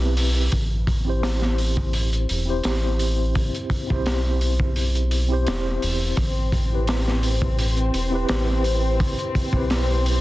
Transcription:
Already playing: analog synth bass B1, tine electric piano C4 E4 G4 B4
0.17 open hi-hat
0.52 analog synth bass A1, kick, open hi-hat
0.87 kick, open hi-hat
1.05 tine electric piano C4 E4 G4
1.09 tine electric piano C5
1.23 snare, open hi-hat
1.42 snare
1.58 open hi-hat
1.77 kick
1.93 open hi-hat
2.13 closed hi-hat
2.29 analog synth bass E1, open hi-hat
2.45 tine electric piano C4 E4 G4
2.50 tine electric piano C5
2.64 analog synth bass A1, snare, open hi-hat
2.99 open hi-hat
3.35 kick, open hi-hat
3.54 closed hi-hat
3.70 kick, open hi-hat
3.87 analog synth bass B1, tine electric piano C4 E4 G4, kick
3.92 tine electric piano C5
4.06 snare, open hi-hat
4.41 open hi-hat
4.60 kick
4.76 open hi-hat
4.95 closed hi-hat
5.11 open hi-hat
5.29 tine electric piano C4 E4 G4
5.33 tine electric piano C5
5.47 analog synth bass E1, snare, open hi-hat
5.82 analog synth bass E1, open hi-hat
6.17 analog synth bass A1, string section C4, kick, open hi-hat
6.52 kick, open hi-hat
6.70 tine electric piano C4 E4 G4
6.75 tine electric piano B4
6.87 snare, open hi-hat
7.08 snare
7.23 open hi-hat
7.42 kick
7.59 open hi-hat
7.77 closed hi-hat
7.94 analog synth bass E1, open hi-hat
8.10 tine electric piano C4 E4 G4
8.15 tine electric piano B4
8.29 analog synth bass A1, snare, open hi-hat
8.64 open hi-hat
9.00 kick, open hi-hat
9.19 closed hi-hat
9.35 kick, open hi-hat
9.52 analog synth bass B1, tine electric piano C4 E4 G4, kick
9.57 tine electric piano B4
9.70 snare, open hi-hat
10.06 open hi-hat

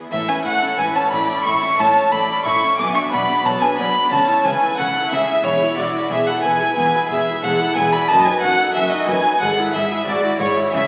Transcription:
Already playing: viola section B3, violin section E4 G#4
0.11 double bass section A1, cello section A2, harpsichord A2, viola section E4, violin section A4 E5, violin E5
0.28 viola section C#4, harpsichord E4, violin section B4 G#5, violin G#5
0.45 double bass section A1, cello section A2, harpsichord A2 C#4, viola section E4, violin section A4 F#5, violin F#5
0.62 viola section C#4, harpsichord A4
0.78 double bass section A1, cello section A2, harpsichord A2 B4, viola section E4, violin section B4 G#5, violin G#5
0.95 viola section C#4, harpsichord A4, violin section C#5 A5, violin A5
1.11 double bass section A1, cello section A2, harpsichord A2 C#4, viola section E4, violin section D5 B5, violin B5
1.29 viola section C#4, harpsichord E4
1.45 double bass section A1, cello section A2, harpsichord A2, viola section E4, violin section E5 C#6, violin C#6
1.62 viola section C#4, harpsichord E4
1.78 double bass section A1, cello section A2, harpsichord A2 C#4, viola section E4, violin section C#5 A5, violin A5
1.95 viola section C#4, harpsichord A4
2.11 double bass section A1, cello section A2, harpsichord A2 B4, viola section E4, violin section D5 B5, violin B5
2.28 viola section C#4, harpsichord A4
2.45 double bass section A1, cello section A2, harpsichord A2 C#4, viola section E4, violin section E5 C#6, violin C#6
2.62 viola section C#4, harpsichord E4
2.78 double bass section B1, harpsichord B2, cello section B2, viola section B3, violin section G#5 D6, violin D6
2.94 harpsichord D4, viola section D4, violin section E5 C#6, violin C#6
3.11 double bass section B1, cello section B2, harpsichord B2 B3, viola section B3, violin section D5 B5, violin B5
3.28 viola section D4, harpsichord G#4
3.44 double bass section B1, cello section B2, harpsichord B2 A4, viola section B3, violin section C#5 A5, violin A5
3.62 viola section D4, harpsichord G#4, violin section B4 G#5, violin G#5
3.77 double bass section B1, cello section B2, harpsichord B2 D4, viola section B3, violin section D5 B5, violin B5
3.95 harpsichord B3, viola section D4
4.11 double bass section C#2, cello section C#3, harpsichord C#3, viola section C#4, violin section C#5 A5, violin A5
4.28 viola section E4, harpsichord E4
4.44 double bass section C#2, cello section C#3, harpsichord C#3 C#4, viola section C#4, violin section B4 G#5, violin G#5
4.62 viola section E4, harpsichord A4
4.77 double bass section C#2, cello section C#3, harpsichord C#3 B4, viola section C#4, violin section A4 F#5, violin F#5
4.96 viola section E4, harpsichord A4
5.11 double bass section C#2, cello section C#3, harpsichord C#3 C#4, viola section C#4, violin section G#4 E5, violin E5
5.28 viola section E4, harpsichord E4
5.44 double bass section E1, cello section E2, harpsichord E2, violin section E4 C#5, viola section G#4, violin C#5
5.62 viola section E4, harpsichord B4
5.77 double bass section E1, cello section E2, harpsichord E2 E4, violin section F#4 D5, viola section G#4, violin D5
5.95 viola section E4, harpsichord B4
6.10 double bass section E1, cello section E2, harpsichord E2 C#5, violin section G#4 E5, viola section G#4, violin E5
6.27 viola section E4, violin section A4 F#5, harpsichord B4, violin F#5
6.43 double bass section E1, cello section E2, harpsichord E2 E4, viola section G#4, violin section B4 G#5, violin G#5
6.61 viola section E4, harpsichord B4
6.76 double bass section E1, cello section E2, harpsichord E2 B3, viola section G#4, violin section B4 G#5, violin G#5
6.95 viola section E4, harpsichord B4
7.08 double bass section E1, cello section E2, harpsichord E2 E4, violin section G#4 E5, viola section G#4, violin E5
7.27 viola section E4, harpsichord B4
7.43 double bass section E1, cello section E2, harpsichord E2 C#5, viola section G#4, violin section A4 F#5, violin F#5
7.60 viola section E4, harpsichord B4
7.75 double bass section E1, cello section E2, harpsichord E2 E4, viola section G#4, violin section B4 G#5, violin G#5
7.92 viola section E4, harpsichord B4, violin section D5 B5, violin B5
8.08 double bass section F#1, cello section F#2, harpsichord F#2, viola section F#4, violin section D#5 A5, violin A5
8.25 viola section D#4, harpsichord F#4, violin section B4 G#5, violin G#5
8.41 double bass section F#1, harpsichord F#2 D#4, cello section F#2, viola section F#4, violin section A4 F#5, violin F#5
8.59 viola section D#4, harpsichord A4
8.74 double bass section F#1, cello section F#2, harpsichord F#2 B4, viola section F#4, violin section G#4 E5, violin E5
8.90 viola section D#4, violin section F#4, harpsichord A4, violin D#5
8.94 violin section D#5
9.07 double bass section F#1, harpsichord F#2 D#4, cello section F#2, viola section F#4, violin section B4 G#5, violin G#5
9.25 viola section D#4, harpsichord F#4
9.41 double bass section G#1, cello section G#2, harpsichord G#2 G#3, viola section G#4, violin section A4 F#5, violin F#5
9.58 viola section E4, harpsichord B4
9.73 double bass section G#1, harpsichord G#2 E4, cello section G#2, violin section G#4 E5, viola section G#4, violin E5
9.91 viola section E4, harpsichord B4
10.07 double bass section G#1, cello section G#2, harpsichord G#2 C#5, violin section F#4 D5, viola section G#4, violin D5
10.23 viola section E4, harpsichord B4
10.39 double bass section G#1, cello section G#2, harpsichord G#2 E4, violin section E4 C#5, viola section G#4, violin C#5
10.57 viola section E4, harpsichord B4
10.72 double bass section C#2, cello section C#3, harpsichord C#3, viola section E4, violin section G#4 E5, violin E5

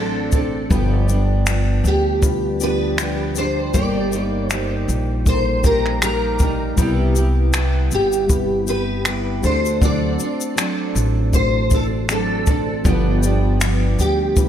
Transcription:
Already playing: upright bass A1, steel-string acoustic guitar F#3 C4 D4 A4, reed electric piano A3 D4 F#4 C5
0.32 steel-string acoustic guitar C4 D4 A4, kick, shaker
0.69 upright bass G1, steel-string acoustic guitar G2 D3 F3 B3 D4 G4, reed electric piano G3 D4 F4 B4, kick, shaker
1.08 steel-string acoustic guitar F3 B3 D4 G4, shaker
1.46 steel-string acoustic guitar F3 B3 D4 G4, finger snap, shaker
1.84 upright bass D2, steel-string acoustic guitar G4, shaker
2.21 reed electric piano G3 D4 F4 B4, kick, shaker
2.60 steel-string acoustic guitar F3 B3 D4 G4 B4, shaker
2.98 steel-string acoustic guitar F3 B3 D4 G4, finger snap, shaker
3.35 steel-string acoustic guitar F3 D4 G4 C5, shaker
3.73 upright bass G1, steel-string acoustic guitar G2 D#3 G3 A#3 D#4 G4 D5, reed electric piano G3 A#3 D#4 A4, kick, shaker
3.81 reed electric piano A#4
4.11 steel-string acoustic guitar G3 A#3 D#4 G4, shaker
4.50 steel-string acoustic guitar G3 A#3 D#4 G4 C5, finger snap, shaker
4.88 upright bass A#1, shaker
5.25 reed electric piano G3 A#3 D#4 A4, steel-string acoustic guitar C5, kick, shaker
5.34 reed electric piano A#4
5.64 steel-string acoustic guitar G3 A#3 D#4 G4 A#4, kick, shaker
5.86 finger snap
6.01 steel-string acoustic guitar G3 A#3 D#4 G4 A#4, finger snap, shaker
6.39 steel-string acoustic guitar G3 A#3 D#4 G4, kick, shaker
6.76 upright bass C2, steel-string acoustic guitar C3 G3 B3 E4 G4, reed electric piano G3 C4 E4 B4, kick, shaker
7.15 steel-string acoustic guitar B3 E4 G4, shaker
7.53 steel-string acoustic guitar G3 B3 E4 G4, finger snap, shaker
7.91 upright bass G1, steel-string acoustic guitar G4, shaker
8.12 shaker
8.27 reed electric piano G3 C4 E4 B4, kick, shaker
8.67 steel-string acoustic guitar B3 E4 G4 B4, shaker
9.05 steel-string acoustic guitar G3 B3 E4 G4, finger snap, shaker
9.42 upright bass D2, reed electric piano A3 D4 F#4 C5, steel-string acoustic guitar C4 D4 A4 C5, shaker
9.65 shaker
9.81 steel-string acoustic guitar D3 F#3 C4 D4 A4 D5, kick, shaker
10.19 steel-string acoustic guitar C4 D4 A4, shaker
10.41 shaker
10.55 steel-string acoustic guitar F#3 C4 D4 A4, finger snap, shaker
10.95 upright bass A1, shaker
11.32 reed electric piano A3 D4 F#4 C5, steel-string acoustic guitar C5, kick, shaker
11.70 steel-string acoustic guitar C4 D4 A4, kick, shaker
11.75 steel-string acoustic guitar A4
12.09 steel-string acoustic guitar F#3 C4 D4 A4, finger snap, shaker
12.47 steel-string acoustic guitar C4 D4 A4, kick, shaker
12.84 upright bass G1, steel-string acoustic guitar G2 D3 F3 B3 D4 G4, reed electric piano G3 D4 F4 A4, kick, shaker
12.92 reed electric piano B4
13.22 steel-string acoustic guitar F3 B3 D4 G4, shaker
13.60 steel-string acoustic guitar F3 B3 D4 G4, finger snap, shaker
13.99 upright bass D2, steel-string acoustic guitar G4, shaker
14.35 reed electric piano G3 D4 F4 B4, kick, shaker

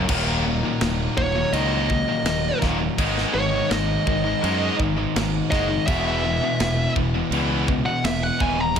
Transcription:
0.09 fingered electric bass D#1, distorted electric guitar D#2 A#2 D#3 F#3 A#3 D#4, kick, crash
0.45 distorted electric guitar D#2 A#2
0.63 distorted electric guitar D#2 A#2
0.81 fingered electric bass D#1, distorted electric guitar D#2 A#2, snare, crash
1.17 fingered electric bass D#1, distorted electric guitar D#2 A#2, lead electric guitar C#5, kick
1.35 distorted electric guitar D#2 A#2
1.53 fingered electric bass C#2, distorted electric guitar D#2 A#2 D#3, lead electric guitar D#5, crash
1.90 distorted electric guitar D#2 A#2, kick
2.08 distorted electric guitar D#2 A#2
2.24 fingered electric bass D#1, distorted electric guitar D#2 A#2, snare, crash
2.61 fingered electric bass D#1, distorted electric guitar D#2 A#2 D#3, kick, snare
2.80 distorted electric guitar D#2 A#2
2.98 fingered electric bass G#1, distorted electric guitar G#2 D#3 G#3 B3 D#4, kick, crash
3.18 snare
3.34 fingered electric bass G#1, distorted electric guitar G#2 D#3, lead electric guitar C#5
3.53 distorted electric guitar G#2 D#3
3.69 fingered electric bass G#1, distorted electric guitar G#2 D#3, lead electric guitar D#5, snare, crash
4.06 fingered electric bass G#1, distorted electric guitar G#2 D#3, kick
4.24 distorted electric guitar G#2 D#3
4.42 fingered electric bass F#2, distorted electric guitar G#2 D#3 G#3, crash
4.77 fingered electric bass G#1, distorted electric guitar G#2 D#3, kick
4.96 distorted electric guitar G#2 D#3
5.16 fingered electric bass G#1, distorted electric guitar G#2 D#3, snare, crash
5.51 fingered electric bass F#1, distorted electric guitar G#2 D#3 G#3, lead electric guitar D#5, kick, snare
5.69 distorted electric guitar G#2 D#3
5.87 fingered electric bass E1, distorted electric guitar E2 B2 E3 G#3 B3, lead electric guitar E5, kick, crash
5.91 distorted electric guitar E4
6.24 distorted electric guitar E2 B2
6.43 distorted electric guitar E2 B2
6.60 fingered electric bass E1, distorted electric guitar E2 B2, snare, crash
6.96 fingered electric bass E1, distorted electric guitar E2 B2, kick
7.15 distorted electric guitar E2 B2
7.30 fingered electric bass C#2, distorted electric guitar E2 B2 E3, crash
7.68 distorted electric guitar E2 B2, kick
7.86 distorted electric guitar E2 B2, lead electric guitar F#5
8.04 fingered electric bass E1, distorted electric guitar E2 B2, lead electric guitar E5, snare, crash
8.23 lead electric guitar F#5
8.40 fingered electric bass D#1, distorted electric guitar E2 B2 E3, lead electric guitar G#5, kick
8.59 distorted electric guitar E2 B2, lead electric guitar A#5
8.76 fingered electric bass C#2, distorted electric guitar C#3 G#3, kick, crash

